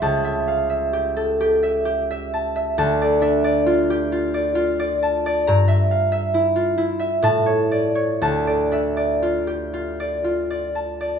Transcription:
<<
  \new Staff \with { instrumentName = "Harp" } { \time 3/4 \key d \minor \tempo 4 = 65 << { a''2. | a''2. | bes''2 a''4 | a''2. | } \\ { <g' e''>16 e''16 f''16 e''16 g'16 a'16 g'16 e''16 g'16 e''16 a''16 e''16 | r16 d''16 e''16 d''16 f'16 g'16 f'16 d''16 f'16 d''16 a''16 d''16 | r16 e''16 f''16 e''16 e'16 f'16 e'16 e''8 cis''16 d''16 cis''16 | r16 d''16 e''16 d''16 f'16 g'16 f'16 d''16 f'16 d''16 a''16 d''16 | } >> }
  \new Staff \with { instrumentName = "Harp" } { \clef bass \time 3/4 \key d \minor cis,2. | d,8 d'2~ d'8 | g,2 a,4 | d,8 d'2~ d'8 | }
>>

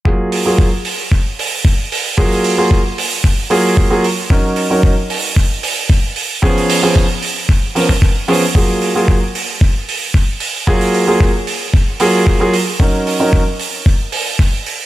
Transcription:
<<
  \new Staff \with { instrumentName = "Grand piano" } { \time 4/4 \key fis \major \tempo 4 = 113 <fis ais eis' gis'>8. <fis ais eis' gis'>8 r2 r8. | <fis ais eis' gis'>8. <fis ais eis' gis'>8 r4 r16 <fis ais eis' gis'>8. <fis ais eis' gis'>16 r8 | <fis cis' dis' ais'>8. <fis cis' dis' ais'>8 r2 r8. | <eis b cis' gis'>8. <eis b cis' gis'>8 r4 r16 <eis b cis' ais'>16 r8. <eis b cis' gis'>16 r16 |
<fis ais eis' gis'>8. <fis ais eis' gis'>8 r2 r8. | <fis ais eis' gis'>8. <fis ais eis' gis'>8 r4 r16 <fis ais eis' gis'>8. <fis ais eis' gis'>16 r8 | <fis cis' dis' ais'>8. <fis cis' dis' ais'>8 r2 r8. | }
  \new DrumStaff \with { instrumentName = "Drums" } \drummode { \time 4/4 bd8 hho8 bd8 hho8 bd8 hho8 bd8 hho8 | bd16 hho16 hho8 bd8 hho8 bd8 hho8 bd8 hho8 | bd8 hho8 bd8 hho8 bd8 hho8 bd8 hho8 | bd16 hho16 hho8 bd8 hho8 bd8 hho16 bd16 bd8 hho8 |
bd8 hho8 bd8 hho8 bd8 hho8 bd8 hho8 | bd16 hho16 hho8 bd8 hho8 bd8 hho8 bd8 hho8 | bd8 hho8 bd8 hho8 bd8 hho8 bd8 hho8 | }
>>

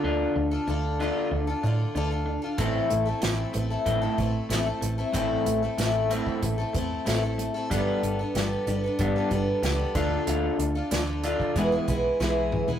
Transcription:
<<
  \new Staff \with { instrumentName = "Twelve-string acoustic guitar" } { \time 4/4 \key a \minor \tempo 4 = 94 <d d' f' a'>8. <d' f' a'>16 <d d' f' a'>8 <d d' f' a'>8. <d' f' a'>16 <d d' f' a'>8 <d d' f' a'>16 <d' f' a'>8 <d' f' a'>16 | <a, e a c' e' a'>8. <a c' e' a'>16 <a, e a c' e' a'>8 <a c' e' a'>16 <a c' e' a'>8 <a c' e' a'>16 <a c' e' a'>8 <a, e a c' e' a'>16 <a c' e' a'>8 <a c' e' a'>16 | <a, e a c' e' a'>8. <a c' e' a'>16 <a, e a c' e' a'>8 <a c' e' a'>8. <a c' e' a'>16 <a c' e' a'>8 <a, e a c' e' a'>16 <a c' e' a'>8 <a c' e' a'>16 | <g b d' a'>8. <b d' a'>16 <g b d' a'>8 <g b d' a'>16 <b d' a'>8 <b d' a'>16 <g b d' a'>8 <g b d' a'>8 <d d' f' a'>8~ |
<d d' f' a'>8. <d' f' a'>16 <d d' f' a'>8 <d d' f' a'>8 <e, e gis b e' gis'>16 <gis b e' gis'>16 <gis b e' gis'>8 <e, e gis b e' gis'>8. <gis b e' gis'>16 | }
  \new Staff \with { instrumentName = "Clean electric guitar" } { \time 4/4 \key a \minor <d d' f'>8 <d d'>8 <d d'>8 <d d' f'>8 <d d'>8 <d d'>8 <d d'>8 <d d'>8 | <a, a c'>8 <a, a>8 <a, a>8 <a, a>8 <a, a c'>8 <a, a>8 <a, a>8 <a, a>8 | <a, a c'>8 <a, a>8 <a, a>8 <a, a c'>8 <a, a>8 <a, a>8 <a, a>8 <a, a>8 | <g b d'>8 <g d'>8 <g d'>8 <g d'>8 <g b d'>8 <g d'>8 <g d'>8 <d d' f'>8 |
<d d' f'>8 <d d'>8 <d d'>8 <d d' f'>8 <e, e gis>8 <e, e>8 <e, e>8 <e, e>8 | }
  \new Staff \with { instrumentName = "Picked electric bass" } { \clef bass \time 4/4 \key a \minor d,8 d,8 d,4 d,8 a,8 d,4 | a,,8 a,,8 a,,8 a,,8 a,,8 a,,8 a,,8 a,,8 | a,,8 a,,8 a,,4 a,,8 e,8 a,,4 | g,,8 g,,8 g,,8 g,,8 g,,8 g,,8 cis,8 d,8 |
d,8 d,8 d,4 e,,8 b,,8 b,,4 | }
  \new DrumStaff \with { instrumentName = "Drums" } \drummode { \time 4/4 r4 r4 r4 r4 | <hh bd>8 hh8 <hh sn>8 hh8 <hh bd>8 <hh bd>8 <hh sn>8 hh8 | <hh bd>8 hh8 <hh sn>8 hh16 bd16 <hh bd>8 <hh bd>8 <hh sn>8 hh8 | <hh bd>8 hh8 <hh sn>8 hh8 <hh bd>8 <hh bd>8 <hh sn>8 <hh bd>8 |
hh8 hh8 <hh sn>8 hh16 bd16 <hh bd>8 <hh bd>8 sn8 toml16 tomfh16 | }
>>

